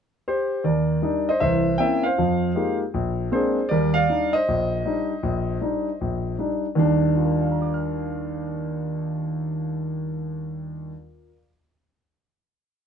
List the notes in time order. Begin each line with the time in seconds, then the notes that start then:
0.28 G4 C5
0.64 D#2 A#4 D5
1.02 G3 D4 D#4
1.29 C5 D#5
1.40 C2 E3 C5 E5
1.78 A#3 C4 C#4 E4 E5 G5
2.03 C5 F5
2.18 F2 F3
2.55 G#3 A#3 D#4 F4 G4
2.94 A#1
3.31 G#3 A#3 C4 D4 G#4 C5
3.69 D#2 G3 A#4 D5
3.94 D5 F5
4.09 G3 D4 D#4
4.33 C5 D#5
4.48 A#1
4.85 G3 D4 D#4
5.23 A#1
5.61 G3 D4 D#4
6.01 A#1
6.38 G3 D4 D#4
6.75 D#2 D#3 G3 D4
7.17 F4
7.24 A#4
7.32 D5
7.41 F5
7.51 A#5
7.62 D6
7.74 F6